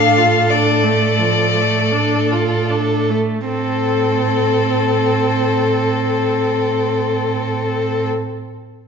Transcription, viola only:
0.00 0.19 D4 soft
0.17 0.51 F4 soft
0.49 0.85 D4 soft
0.84 1.20 A3 soft
1.19 1.56 F3 soft
1.55 1.93 A3 soft
1.92 2.32 D4 soft
2.31 2.71 F4 soft
2.69 3.11 D4 soft
3.10 3.47 A3 soft
3.48 8.07 C4 soft

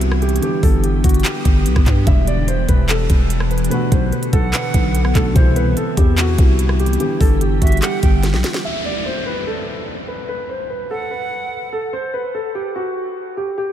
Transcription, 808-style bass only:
0.00 0.40 C2 loud
0.63 1.02 G1 loud
1.04 1.24 G1 loud
1.45 1.67 G1 loud
1.66 1.76 B1 loud
1.76 1.86 G1 loud
1.86 2.06 G2 loud
2.07 2.66 E1 loud
2.69 3.08 E1 loud
3.10 3.69 E1 loud
3.92 4.12 B1 loud
4.33 4.53 B1 loud
4.74 5.14 B1 loud
5.15 5.35 B1 loud
5.36 5.75 C2 loud
5.97 6.37 E2 loud
6.39 6.98 C2 loud
7.21 7.60 G1 loud
7.62 7.81 G1 loud
8.03 8.35 G1 loud
8.34 8.43 B1 loud

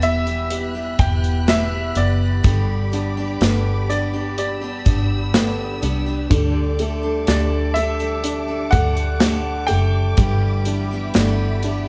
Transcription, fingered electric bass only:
0.00 0.95 E1 medium
0.99 1.92 E1 medium
1.96 2.41 F#1 medium
2.45 3.37 G1 medium
3.41 4.82 G1 medium
4.86 5.79 G1 medium
5.83 6.28 C2 medium
6.31 7.24 D2 loud
7.28 8.69 D2 medium
8.73 9.66 D2 medium
9.71 10.15 F#1 medium
10.18 11.11 G1 loud
11.16 11.88 G1 medium

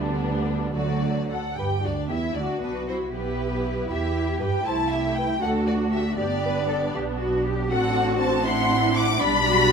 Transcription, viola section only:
0.00 0.73 G3 medium
0.00 0.74 B3 soft
0.75 1.37 F#3 soft
0.75 1.36 A3 soft
1.57 1.82 G4 soft
1.84 2.10 D4 soft
2.10 2.36 E4 medium
2.35 2.62 D4 soft
2.62 2.87 B3 soft
2.88 2.96 C4 soft
3.13 3.88 B3 medium
3.90 4.41 E4 medium
4.40 4.66 G4 medium
4.65 5.38 A3 soft
4.65 5.38 E4 soft
5.42 6.16 A3 soft
5.42 6.17 D4 medium
6.18 7.70 B3 medium
6.18 7.67 D4 medium
7.70 8.43 C4 medium
7.70 8.43 D4 medium
8.44 9.19 C4 medium
8.44 9.19 D4 medium
9.20 9.72 G3 medium
9.20 9.72 D4 medium

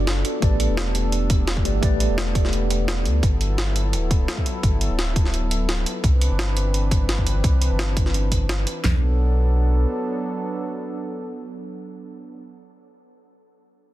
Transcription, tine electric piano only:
0.00 0.44 B3 medium
0.00 0.44 F#4 medium
0.00 0.44 A4 medium
0.00 0.44 D5 loud
0.40 1.62 A3 medium
0.40 1.63 G4 medium
0.40 1.63 B4 medium
0.40 1.64 D5 medium
1.64 1.79 A3 medium
1.64 1.79 G4 medium
1.64 1.80 B4 medium
1.64 1.80 D5 medium
1.81 2.85 A3 medium
1.81 2.86 G4 medium
1.81 2.86 B4 medium
1.81 2.87 D5 loud

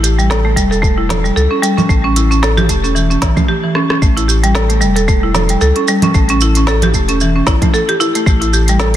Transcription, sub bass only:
0.00 0.58 A1 loud
0.56 1.32 E1 loud
1.36 1.48 C#2 medium
1.89 2.70 A1 loud
2.69 3.17 E1 loud
3.22 3.33 A1 medium
4.02 4.83 A1 loud
4.82 5.57 E1 loud
5.61 5.73 C#2 medium
6.15 6.95 A1 loud
6.94 7.42 E1 medium
7.47 7.58 A1 medium
8.27 8.96 A1 loud

